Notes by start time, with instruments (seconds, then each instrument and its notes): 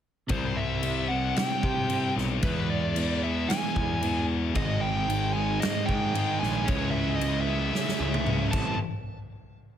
0.27 picked electric bass C2, clean electric guitar C3 G3 C4 E4, kick, crash
0.31 lead electric guitar C5
0.57 lead electric guitar E5
0.81 clean electric guitar C3 G3 C4 E4, crash
1.08 clean electric guitar G3 C4 E4, lead electric guitar F#5
1.12 distorted electric guitar C3
1.35 clean electric guitar C3 G3 C4 E4, lead electric guitar G5, snare, crash
1.61 picked electric bass C3, clean electric guitar G3 C4 E4, kick
1.87 clean electric guitar C3 G3 C4 E4, crash
2.16 picked electric bass B1, snare
2.41 distorted electric guitar E2 B2, picked electric bass E2, clean electric guitar E3 G#3 B3 E4, lead electric guitar B4, kick, crash
2.46 distorted electric guitar E3
2.70 lead electric guitar D5
2.95 clean electric guitar E3 G#3 B3 E4, crash
3.21 distorted electric guitar E2 B2 E3, clean electric guitar G#3 B3 E4, lead electric guitar E5
3.48 clean electric guitar E3 G#3 B3 E4, lead electric guitar G#5, snare, crash
3.75 picked electric bass E2, clean electric guitar G#3 B3 E4, kick
4.01 distorted electric guitar E2 B2, clean electric guitar E3 G#3 B3 E4, crash
4.54 picked electric bass G#1, clean electric guitar G#2 D#3 G#3 C4 D#4, distorted electric guitar G#4, lead electric guitar D#5, kick, crash
4.81 lead electric guitar G5
5.07 clean electric guitar D#3 G#3 C4 D#4, crash
5.33 distorted electric guitar D#3, clean electric guitar G#3 C4 D#4, lead electric guitar G#5
5.38 distorted electric guitar G#2
5.59 clean electric guitar G#2 D#3 G#3 C4 D#4, lead electric guitar D#5, snare, crash
5.86 picked electric bass G#2, clean electric guitar C4 D#4, distorted electric guitar G#4, lead electric guitar G5, kick
5.90 distorted electric guitar G#2 D#3, clean electric guitar G#3
6.13 distorted electric guitar G#2 G#4, clean electric guitar D#3 G#3 C4 D#4, crash
6.40 picked electric bass A#1, lead electric guitar G#5, snare
6.65 picked electric bass C#2, clean electric guitar C#3 G#3 C#4, lead electric guitar C#5, kick, crash
6.70 clean electric guitar E4, distorted electric guitar G#4
6.91 lead electric guitar E5
7.16 lead electric guitar D#5
7.20 clean electric guitar C#3 G#3 C#4 E4, crash
7.41 lead electric guitar E5
7.47 distorted electric guitar C#3, clean electric guitar G#3 C#4 E4
7.73 clean electric guitar C#3 G#3 C#4 E4, snare
7.88 snare
7.99 picked electric bass C#2, distorted electric guitar C#3 G#4, clean electric guitar C#4 E4
8.03 clean electric guitar G#3
8.14 high tom
8.25 clean electric guitar C#3 G#3 C#4 E4, distorted electric guitar G#4, mid tom
8.51 picked electric bass A1, clean electric guitar A2 E3 G3 C4 E4, distorted electric guitar A3, lead electric guitar A5, kick, crash